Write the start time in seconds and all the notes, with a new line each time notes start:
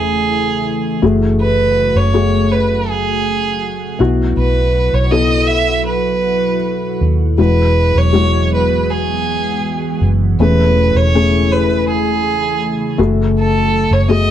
Already playing: E1 C#3 E3 A3 C#4 E4 G#4 A4
1.02 F#1 F#3 A3 F#4 G#4
1.41 B4
1.95 F#1 C#5
2.13 A3 F#4 G#4
2.52 B4
2.89 G#4
3.99 B1 B2 B3 E4 F#4
4.37 B1 B4
4.93 B1 C#5
5.11 B3 E4 A4 D#5
5.47 E5
5.87 B4
7.01 D#2
7.37 E1 E3 G#3 B3 E4 F#4 B4
7.95 E1 C#5
8.13 G#3 E4 F#4
8.54 B4
8.90 G#4
10.01 F#1
10.38 E1 C#3 E3 A3 C#4 E4 G#4 B4
10.94 E1 C#5
11.15 A3 C#4 G#4
11.52 B4
11.89 G#4
12.98 F#1 F#3 A3 F#4 A4
13.39 A4
13.91 F#1 C#5
14.08 A3 F#4 G#4 D#5